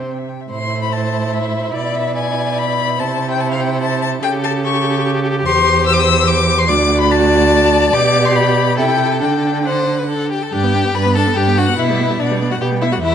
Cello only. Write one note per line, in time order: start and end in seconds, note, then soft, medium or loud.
0.00 0.28 C3 soft
0.51 1.72 A2 medium
1.76 3.01 B2 medium
3.00 4.22 C3 medium
4.23 5.44 C#3 medium
5.46 6.71 E2 loud
6.70 7.93 D2 medium
7.94 8.80 B2 medium
8.78 9.23 C3 medium
9.22 10.32 D3 medium
10.53 10.90 G2 medium
10.95 11.32 G2 medium
11.37 11.74 G2 medium
11.79 12.15 B2 medium
12.20 12.56 B2 medium
12.62 12.97 B2 medium
13.02 13.15 E2 medium